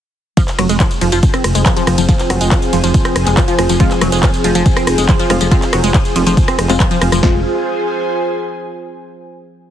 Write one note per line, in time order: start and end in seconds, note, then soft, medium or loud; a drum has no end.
0.37 0.41 F3 loud
0.37 7.27 F3 medium
0.37 7.27 C4 medium
0.37 7.22 F4 loud
0.37 kick loud
0.37 closed hi-hat medium
0.37 ride medium
0.37 tambourine medium
0.43 7.23 G#4 medium
0.48 clap soft
0.48 closed hi-hat medium
0.48 tambourine soft
0.59 0.67 F1 medium
0.59 0.68 F#3 medium
0.59 cross-stick medium
0.59 open hi-hat loud
0.59 ride medium
0.69 0.77 F1 medium
0.69 0.76 G#3 loud
0.69 7.23 C5 medium
0.69 closed hi-hat medium
0.69 tambourine medium
0.80 0.87 F3 loud
0.80 kick loud
0.80 clap loud
0.80 closed hi-hat medium
0.80 ride medium
0.80 tambourine medium
0.87 7.23 G#5 medium
0.91 closed hi-hat medium
0.91 tambourine soft
1.01 1.10 F1 medium
1.01 1.11 F3 medium
1.01 open hi-hat medium
1.01 ride medium
1.12 1.20 F1 medium
1.12 1.19 F3 loud
1.12 closed hi-hat medium
1.12 tambourine medium
1.23 kick loud
1.23 closed hi-hat medium
1.23 ride medium
1.23 tambourine soft
1.34 1.43 C4 medium
1.34 cross-stick medium
1.34 closed hi-hat medium
1.34 tambourine soft
1.44 1.52 F1 medium
1.44 cross-stick medium
1.44 open hi-hat loud
1.44 ride medium
1.55 1.63 F1 medium
1.55 1.62 G#3 medium
1.55 closed hi-hat medium
1.55 tambourine medium
1.66 1.72 F3 loud
1.66 kick loud
1.66 clap loud
1.66 closed hi-hat medium
1.66 ride medium
1.66 tambourine soft
1.76 1.83 F3 loud
1.76 closed hi-hat medium
1.76 tambourine soft
1.87 1.95 F1 medium
1.87 1.97 F3 medium
1.87 cross-stick medium
1.87 open hi-hat medium
1.87 ride medium
1.98 2.06 F1 medium
1.98 2.04 F3 loud
1.98 closed hi-hat medium
1.98 tambourine medium
2.09 2.13 F3 loud
2.09 kick loud
2.09 closed hi-hat medium
2.09 ride medium
2.09 tambourine medium
2.19 clap soft
2.19 closed hi-hat medium
2.19 tambourine soft
2.30 2.38 F1 medium
2.30 2.40 F#3 medium
2.30 cross-stick medium
2.30 open hi-hat loud
2.30 ride medium
2.41 2.49 F1 medium
2.41 2.47 G#3 loud
2.41 closed hi-hat medium
2.41 tambourine medium
2.51 2.58 F3 loud
2.51 kick loud
2.51 clap loud
2.51 closed hi-hat medium
2.51 ride medium
2.51 tambourine medium
2.62 closed hi-hat medium
2.62 tambourine soft
2.73 2.81 F1 loud
2.73 2.82 F3 medium
2.73 open hi-hat medium
2.73 ride medium
2.84 2.92 F1 medium
2.84 2.90 F3 loud
2.84 closed hi-hat medium
2.84 tambourine medium
2.94 kick loud
2.94 closed hi-hat medium
2.94 ride medium
2.94 tambourine soft
3.05 3.15 C4 medium
3.05 cross-stick medium
3.05 closed hi-hat medium
3.05 tambourine soft
3.16 3.24 F1 medium
3.16 cross-stick medium
3.16 open hi-hat loud
3.16 ride medium
3.27 3.35 F1 medium
3.27 3.33 G#3 medium
3.27 clap soft
3.27 closed hi-hat medium
3.27 tambourine medium
3.37 3.44 F3 loud
3.37 kick loud
3.37 clap loud
3.37 closed hi-hat medium
3.37 ride medium
3.37 tambourine soft
3.48 3.54 F3 medium
3.48 closed hi-hat medium
3.48 tambourine soft
3.59 3.67 F1 loud
3.59 3.68 F3 medium
3.59 cross-stick medium
3.59 open hi-hat loud
3.59 ride medium
3.69 3.77 F1 medium
3.69 3.76 F3 loud
3.69 closed hi-hat medium
3.69 tambourine medium
3.80 3.84 F3 loud
3.80 3.89 G#3 loud
3.80 3.89 C4 medium
3.80 3.89 F4 loud
3.80 kick loud
3.80 closed hi-hat medium
3.80 ride medium
3.80 tambourine medium
3.91 clap soft
3.91 closed hi-hat medium
3.91 tambourine soft
4.01 4.10 F1 medium
4.01 4.11 F#3 medium
4.01 cross-stick medium
4.01 open hi-hat loud
4.01 ride medium
4.12 4.20 F1 medium
4.12 4.19 G#3 loud
4.12 closed hi-hat medium
4.12 tambourine medium
4.23 4.29 F3 loud
4.23 kick loud
4.23 clap loud
4.23 closed hi-hat medium
4.23 ride medium
4.23 tambourine medium
4.34 closed hi-hat medium
4.34 tambourine soft
4.44 4.53 F1 loud
4.44 4.54 F3 medium
4.44 open hi-hat loud
4.44 ride medium
4.55 4.63 F1 medium
4.55 4.62 F3 loud
4.55 closed hi-hat medium
4.55 tambourine medium
4.66 kick loud
4.66 closed hi-hat medium
4.66 ride medium
4.66 tambourine soft
4.77 4.86 C4 medium
4.77 cross-stick loud
4.77 closed hi-hat medium
4.77 tambourine soft
4.87 4.95 F1 loud
4.87 cross-stick loud
4.87 open hi-hat loud
4.87 ride medium
4.98 5.06 F1 medium
4.98 5.04 G#3 medium
4.98 closed hi-hat medium
4.98 tambourine medium
5.09 5.15 F3 loud
5.09 kick loud
5.09 clap loud
5.09 closed hi-hat medium
5.09 ride medium
5.19 5.26 F3 loud
5.19 closed hi-hat medium
5.19 tambourine soft
5.30 5.38 F1 medium
5.30 5.40 F3 medium
5.30 5.39 G#3 medium
5.30 5.39 C4 medium
5.30 5.39 F4 medium
5.30 cross-stick loud
5.30 open hi-hat loud
5.30 ride medium
5.41 5.49 F1 medium
5.41 5.47 F3 loud
5.41 closed hi-hat medium
5.41 tambourine medium
5.51 5.55 F3 loud
5.51 5.61 G#3 loud
5.51 5.61 C4 medium
5.51 5.61 F4 loud
5.51 kick loud
5.51 closed hi-hat medium
5.51 ride medium
5.51 tambourine medium
5.62 clap soft
5.62 closed hi-hat medium
5.62 tambourine soft
5.73 5.81 F1 loud
5.73 5.83 F#3 medium
5.73 cross-stick medium
5.73 open hi-hat loud
5.73 ride medium
5.84 5.92 F1 medium
5.84 5.90 G#3 loud
5.84 closed hi-hat medium
5.84 tambourine medium
5.94 6.01 F3 loud
5.94 kick loud
5.94 clap loud
5.94 closed hi-hat medium
5.94 ride medium
5.94 tambourine medium
6.05 closed hi-hat medium
6.05 tambourine soft
6.16 6.24 F1 loud
6.16 6.25 F3 medium
6.16 open hi-hat medium
6.16 ride medium
6.27 6.35 F1 medium
6.27 6.33 F3 loud
6.27 closed hi-hat medium
6.27 tambourine medium
6.37 kick loud
6.37 closed hi-hat medium
6.37 ride medium
6.37 tambourine medium
6.48 6.58 C4 medium
6.48 cross-stick loud
6.48 closed hi-hat medium
6.48 tambourine soft
6.59 6.67 F1 loud
6.59 cross-stick medium
6.59 open hi-hat loud
6.59 ride medium
6.69 6.77 F1 medium
6.69 6.76 G#3 medium
6.69 6.75 G#3 medium
6.69 6.75 C4 medium
6.69 6.75 F4 medium
6.69 clap soft
6.69 closed hi-hat medium
6.69 tambourine medium
6.80 6.87 F3 loud
6.80 kick loud
6.80 clap loud
6.80 closed hi-hat medium
6.80 ride medium
6.80 tambourine medium
6.91 6.97 F3 loud
6.91 closed hi-hat medium
6.91 tambourine soft
7.02 7.10 F1 medium
7.02 7.11 F3 medium
7.02 cross-stick loud
7.02 open hi-hat medium
7.02 ride medium
7.12 7.20 F1 medium
7.12 7.19 F3 loud
7.12 cross-stick medium
7.12 closed hi-hat medium
7.12 tambourine medium
7.23 7.43 F1 loud
7.23 7.43 F3 loud
7.23 7.39 G#3 medium
7.23 7.39 C4 medium
7.23 7.39 F4 loud
7.23 8.90 F4 medium
7.23 kick loud
7.23 snare loud
7.29 8.90 G#4 medium
7.36 8.90 C5 medium
7.42 8.90 G#5 medium